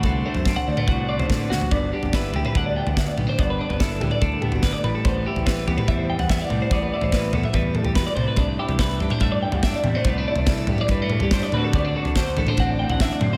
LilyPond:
<<
  \new Staff \with { instrumentName = "Clean electric guitar" } { \time 4/4 \key g \major \tempo 4 = 144 a'8 c''8 a'16 fis''16 d''16 b'16 fis''8 d''16 c''16 a'16 b'16 fis'8 | d''8 g'8 b'8 g'16 b'16 fis''16 d''16 g''16 fis''16 e''16 d''8 c''16 | d''16 b'16 d''16 b'16 a'8 g'16 d''16 a'8 g'16 fis'16 b'16 d''16 b'16 a'16 | c''8 g'8 b'8 g'16 b'16 e''16 c''16 g''16 fis''16 e''16 d''8 c''16 |
d''16 b'16 d''16 c''16 b'8 a'16 e''16 b'8 a'16 g'16 b'16 d''16 c''16 b'16 | d''8 g'8 b'8 a'16 c''16 e''16 d''16 g''16 fis''16 e''16 d''8 c''16 | d''16 b'16 d''16 b'16 a'8 g'16 d''16 b'8 a'16 g'16 c''16 d''16 b'16 a'16 | d''8 a'8 c''8 a'16 c''16 fis''16 d''16 g''16 fis''16 e''16 d''8 c''16 | }
  \new Staff \with { instrumentName = "Clean electric guitar" } { \time 4/4 \key g \major << { <d a c' fis'>8 a8 c'8 g16 a16 fis'8 c'4 fis'8 | b8 d'8 e'4 d'8 b4 b16 d'16 | b8 d'8 e'4 d'8 b4 g8 | b8 e'4 b8 g4 b8 g8 |
b8 e'4 b8 g4. a8 | d'8 e'4 d'8 a4 d'8 g16 a16 | b16 d'16 e'4 b16 d'16 g16 a8. d'8 <d c' d' fis'>8 | b16 d'16 fis'4 b16 d'16 c'4 d'8 c'8 | } \\ { d,8 d4. a,4. d,8 | g,4. d4. d,4 | g,4. d4. d,8 a,8~ | a,4 e4. e,4 a,8~ |
a,4 e4. a,8 b,8 c8~ | c4 e4. g,4 c8~ | c4 e4. g,4 d,8~ | d,4 d4. a,4 d,8 | } >> }
  \new Staff \with { instrumentName = "Fingered electric bass" } { \clef bass \time 4/4 \key g \major c,8 r16 fis,8 r16 d,8 c,8. d8. d,16 r16 | g,,8 r16 g,,8. d,16 r16 d,8. d,8 r16 b,,16 r16 | g,,8 r16 g,,8. d,16 r16 d,8. g,,8 r16 a,,16 r16 | a,,8 r16 a,,8. e,16 r16 e,8. e,8 r16 c,16 r16 |
a,,8 r16 a,,8. e,16 r16 e,8. e,8 r16 c,16 r16 | c,8 r16 c,8. g,16 r16 g,8. g,8 r16 e,16 r16 | c,8 r16 c,8. g,16 r16 g,8. g,8 r16 d,16 r16 | d,8 r16 d,8. a,,16 r16 a,,8. a,,8 r16 fis,16 r16 | }
  \new DrumStaff \with { instrumentName = "Drums" } \drummode { \time 4/4 <bd tomfh>8. tomfh16 <bd sn>16 tomfh8 toml16 <bd tomfh>8. tomfh16 <bd sn toml>8 sn16 tomfh16 | <bd tomfh>8. tomfh16 <bd sn>8 tomfh16 toml16 <bd tomfh>8. tomfh16 <bd sn>8 toml8 | <bd tomfh>8. tomfh16 <bd sn>8 <tomfh toml>16 toml16 <bd tomfh>8 toml16 tomfh16 <bd sn>8 toml8 | <bd tomfh>8. tomfh16 <bd sn>8 tomfh16 toml16 <bd tomfh>8. tomfh16 <bd sn>8 toml8 |
<bd tomfh>8. tomfh16 <bd sn>8 <tomfh toml>16 toml16 <bd tomfh>8 toml16 tomfh16 <bd sn>8 toml8 | <bd tomfh>8. tomfh16 <bd sn>8 tomfh16 toml16 <bd tomfh>8. tomfh16 <bd sn>8 toml8 | <bd tomfh>8. tomfh16 <bd sn>8 <tomfh toml>16 toml16 <bd tomfh>8 toml16 tomfh16 <bd sn>8 toml8 | <bd tomfh>8. tomfh16 <bd sn>8 tomfh16 toml16 <bd tomfh>8. tomfh16 <bd sn>8 toml8 | }
>>